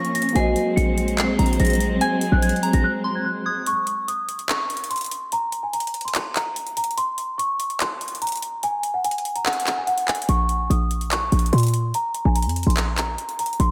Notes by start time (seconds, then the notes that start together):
Already playing: F3 A#3 C#4 F4 C#5 C#6 A#6
0.05 closed hi-hat
0.15 A#6, closed hi-hat
0.22 closed hi-hat
0.29 A#3, closed hi-hat
0.34 A#1 F#3 G#3 C4 F#4 C5 D#5 G#5 C7, closed hi-hat
0.56 closed hi-hat
0.76 A#1 C#7, closed hi-hat
0.98 closed hi-hat
1.08 closed hi-hat
1.18 C7, clap, closed hi-hat
1.39 A#1 A#5, closed hi-hat
1.46 closed hi-hat
1.53 closed hi-hat
1.60 A#1 A#6, closed hi-hat
1.65 closed hi-hat
1.67 closed hi-hat
1.70 closed hi-hat
1.73 closed hi-hat
1.75 closed hi-hat
1.80 closed hi-hat
2.01 G#5 G#6, closed hi-hat
2.21 closed hi-hat
2.32 A#1 F#6
2.42 G#6, closed hi-hat
2.49 closed hi-hat
2.56 closed hi-hat
2.63 A#5, closed hi-hat
2.73 A#1 A#6, closed hi-hat
2.84 F#6
3.04 C6
3.15 G#6
3.25 F#6
3.46 D#6 G#6
3.66 C#6, closed hi-hat
3.87 closed hi-hat
4.08 D#6, closed hi-hat
4.29 closed hi-hat
4.39 closed hi-hat
4.49 C#6, clap, closed hi-hat
4.70 closed hi-hat
4.77 closed hi-hat
4.84 closed hi-hat
4.90 C6, closed hi-hat
4.96 closed hi-hat
4.98 closed hi-hat
5.01 closed hi-hat
5.04 closed hi-hat
5.06 closed hi-hat
5.11 closed hi-hat
5.32 A#5, closed hi-hat
5.52 closed hi-hat
5.63 G#5
5.73 A#5, closed hi-hat
5.80 closed hi-hat
5.87 closed hi-hat
5.94 closed hi-hat
6.01 C6, closed hi-hat
6.08 closed hi-hat
6.15 clap, closed hi-hat
6.36 A#5, clap, closed hi-hat
6.56 closed hi-hat
6.67 closed hi-hat
6.77 A#5, closed hi-hat
6.84 closed hi-hat
6.91 closed hi-hat
6.97 C6, closed hi-hat
7.18 closed hi-hat
7.38 C#6, closed hi-hat
7.60 closed hi-hat
7.70 closed hi-hat
7.80 C6, clap, closed hi-hat
8.01 closed hi-hat
8.08 closed hi-hat
8.15 closed hi-hat
8.22 A#5, closed hi-hat
8.27 closed hi-hat
8.29 closed hi-hat
8.32 closed hi-hat
8.36 closed hi-hat
8.37 closed hi-hat
8.42 closed hi-hat
8.63 G#5, closed hi-hat
8.83 closed hi-hat
8.94 F#5
9.04 G#5, closed hi-hat
9.11 closed hi-hat
9.18 closed hi-hat
9.25 closed hi-hat
9.36 A#5, closed hi-hat
9.46 F#5, clap, closed hi-hat
9.53 closed hi-hat
9.60 closed hi-hat
9.67 clap, closed hi-hat
9.77 G#5
9.87 F#5, closed hi-hat
9.98 closed hi-hat
10.07 G#5, clap, closed hi-hat
10.15 closed hi-hat
10.22 closed hi-hat
10.29 A#1 C#6, closed hi-hat
10.49 closed hi-hat
10.70 A#1 D#6, closed hi-hat
10.91 closed hi-hat
11.01 closed hi-hat
11.11 C#6, clap, closed hi-hat
11.32 A#1, closed hi-hat
11.39 closed hi-hat
11.46 closed hi-hat
11.53 A#2 C6, closed hi-hat
11.58 closed hi-hat
11.60 closed hi-hat
11.63 closed hi-hat
11.67 closed hi-hat
11.68 closed hi-hat
11.74 closed hi-hat
11.94 A#5, closed hi-hat
12.15 closed hi-hat
12.25 A#1 G#5
12.35 A#5, closed hi-hat
12.42 F2, closed hi-hat
12.49 closed hi-hat
12.56 closed hi-hat
12.63 A#1 C6, closed hi-hat
12.70 closed hi-hat
12.77 clap, closed hi-hat
12.98 A#5, clap, closed hi-hat
13.18 closed hi-hat
13.29 closed hi-hat
13.39 A#5, closed hi-hat
13.46 closed hi-hat
13.53 closed hi-hat
13.60 A#1 C6, closed hi-hat